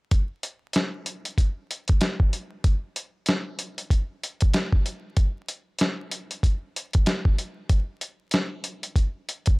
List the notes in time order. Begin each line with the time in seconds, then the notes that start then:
0.11 kick, closed hi-hat
0.43 closed hi-hat
0.73 snare, closed hi-hat
1.06 closed hi-hat
1.25 closed hi-hat
1.38 kick, closed hi-hat
1.71 closed hi-hat
1.88 kick, closed hi-hat
2.01 snare, closed hi-hat
2.20 kick
2.33 closed hi-hat
2.64 kick, closed hi-hat
2.96 closed hi-hat
3.26 snare, closed hi-hat
3.59 closed hi-hat
3.78 closed hi-hat
3.90 kick, closed hi-hat
4.23 closed hi-hat
4.41 kick, closed hi-hat
4.53 snare, closed hi-hat
4.72 kick
4.86 closed hi-hat
5.17 kick, closed hi-hat
5.48 closed hi-hat
5.79 snare, closed hi-hat
6.11 closed hi-hat
6.31 closed hi-hat
6.43 kick, closed hi-hat
6.76 closed hi-hat
6.93 kick, closed hi-hat
7.06 snare, closed hi-hat
7.25 kick
7.38 closed hi-hat
7.69 kick, closed hi-hat
8.01 closed hi-hat
8.31 snare, closed hi-hat
8.64 closed hi-hat
8.83 closed hi-hat
8.96 kick, closed hi-hat
9.29 closed hi-hat
9.46 kick, closed hi-hat